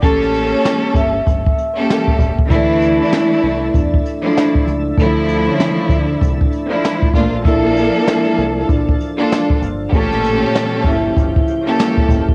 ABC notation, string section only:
X:1
M:4/4
L:1/16
Q:"Swing 16ths" 1/4=97
K:Dm
V:1 name="String section"
[B,^CGA]8- [B,CGA]2 z [B,CGA]4 z | [E,A,DE]8- [E,A,DE]2 z [F,A,DE]3 z2 | [D,F,A,E]8- [D,F,A,E]2 z [F,A,DE]3 [A,B,DF] z | [F,B,DA]8- [F,B,DA]2 z [B,DFA]3 z2 |
[B,,^CGA]8- [B,,CGA]2 z [B,CGA]4 z |]